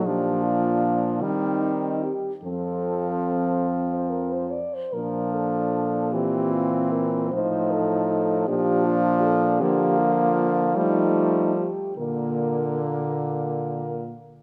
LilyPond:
<<
  \new Staff \with { instrumentName = "French horn" } { \time 6/8 \key bes \major \tempo 4. = 50 g'8 f'4 ees'4 g'8 | a'4. r16 c''16 bes'16 c''16 d''16 c''16 | bes'8 a'4 g'8 f'8 bes'8 | c''8 a'4 g'8 f'8 a'8 |
g'8 f'8. r16 ees'4 g'8 | bes'2~ bes'8 r8 | }
  \new Staff \with { instrumentName = "French horn" } { \time 6/8 \key bes \major d'4. c'4 r8 | c'2~ c'8 r8 | d'4. c'4. | ees'4. d'4. |
bes4. a4 r8 | bes2~ bes8 r8 | }
  \new Staff \with { instrumentName = "French horn" } { \clef bass \time 6/8 \key bes \major f4. g4 r8 | f2~ f8 r8 | f4. e4. | f4. f4. |
f4. g4 r8 | d2~ d8 r8 | }
  \new Staff \with { instrumentName = "French horn" } { \clef bass \time 6/8 \key bes \major bes,4. ees4 r8 | f,2~ f,8 r8 | bes,2. | a,4. bes,4. |
d4. f4 r8 | bes,2~ bes,8 r8 | }
>>